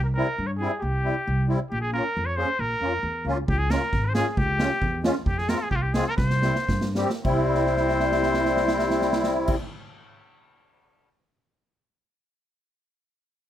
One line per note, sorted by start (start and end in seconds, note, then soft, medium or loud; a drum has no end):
0.00 0.20 C2 medium
0.00 0.05 A#4 medium
0.14 0.27 G3 medium
0.14 0.27 C4 medium
0.14 0.27 E4 medium
0.14 0.48 A#4 loud
0.38 0.65 G2 loud
0.47 0.49 C#5 loud
0.58 0.71 G3 medium
0.58 0.71 C4 medium
0.58 0.72 E4 medium
0.58 0.77 G#4 medium
0.77 1.47 G4 loud
0.77 0.81 G#4 medium
0.82 1.09 C2 loud
1.04 1.15 G3 medium
1.04 1.15 C4 medium
1.04 1.15 E4 medium
1.27 1.54 C2 loud
1.48 1.59 G3 loud
1.48 1.59 C4 medium
1.48 1.60 E4 loud
1.70 1.98 A#1 loud
1.70 1.81 G4 medium
1.81 1.92 G#4 loud
1.92 2.04 A#3 medium
1.92 2.04 C#4 medium
1.92 2.04 F4 medium
1.92 2.28 A#4 medium
2.17 2.43 F2 loud
2.26 2.38 C#5 medium
2.36 2.48 A#3 medium
2.36 2.48 C#4 medium
2.36 2.49 G#4 medium
2.36 2.61 C5 loud
2.59 2.72 A#1 medium
2.59 3.26 A#4 loud
2.81 3.01 F2 medium
2.81 2.93 A#3 medium
2.81 2.92 C#4 medium
2.81 2.93 F4 medium
3.03 3.23 E2 medium
3.25 3.45 C#2 medium
3.25 3.37 A#3 medium
3.25 3.38 C#4 medium
3.25 3.38 F4 loud
3.48 3.75 C#2 loud
3.48 3.60 G4 loud
3.48 kick medium
3.58 3.72 G#4 loud
3.70 3.82 G#3 medium
3.70 3.82 C#4 medium
3.70 3.82 F4 medium
3.70 4.07 A#4 loud
3.70 snare medium
3.93 4.20 G#1 loud
3.93 kick medium
3.93 snare soft
4.06 4.14 C5 medium
4.15 4.26 G#3 medium
4.15 4.26 C#4 medium
4.15 4.26 F4 medium
4.15 4.29 G#4 loud
4.15 snare loud
4.29 4.39 G#4 medium
4.37 4.64 C#2 loud
4.37 5.04 G4 loud
4.37 kick medium
4.58 4.70 G#3 medium
4.58 4.70 C#4 medium
4.58 4.71 F4 medium
4.58 snare medium
4.82 5.09 E2 loud
4.82 kick medium
5.03 5.15 G#3 medium
5.03 5.15 C#4 medium
5.03 5.15 F4 loud
5.03 snare loud
5.26 5.53 F2 loud
5.26 5.40 G4 medium
5.26 kick medium
5.38 5.51 G#4 loud
5.38 snare soft
5.47 5.59 G#3 medium
5.47 5.60 C4 medium
5.47 5.60 F4 medium
5.47 5.60 A#4 medium
5.47 snare loud
5.59 5.70 G#4 medium
5.71 5.99 C2 medium
5.71 5.77 G4 loud
5.71 kick medium
5.76 5.84 F4 medium
5.82 5.95 G4 medium
5.94 6.06 G#3 medium
5.94 6.06 C4 medium
5.94 6.07 F4 medium
5.94 6.06 G#4 medium
5.94 snare medium
6.06 6.17 A#4 loud
6.17 6.48 C2 loud
6.17 6.91 C5 loud
6.17 kick medium
6.17 snare medium
6.30 snare medium
6.42 6.55 G3 medium
6.42 6.56 C4 medium
6.42 6.56 E4 medium
6.42 snare medium
6.55 snare medium
6.68 7.02 G2 loud
6.68 kick medium
6.68 snare medium
6.81 snare medium
6.95 7.10 G3 medium
6.95 7.10 C4 medium
6.95 7.11 G4 loud
6.95 snare medium
7.10 snare medium
7.23 9.55 C2 medium
7.23 9.55 G3 medium
7.23 9.55 C4 medium
7.23 9.55 E4 loud
7.23 9.55 C5 medium
7.23 kick medium
7.23 crash medium
7.55 snare soft
7.66 snare soft
7.77 snare soft
7.89 snare soft
8.00 snare soft
8.12 snare medium
8.23 snare medium
8.34 snare medium
8.45 snare medium
8.57 snare medium
8.68 snare medium
8.79 snare medium
8.90 snare medium
9.02 snare medium
9.13 snare medium
9.24 snare medium
9.48 kick loud
9.48 crash medium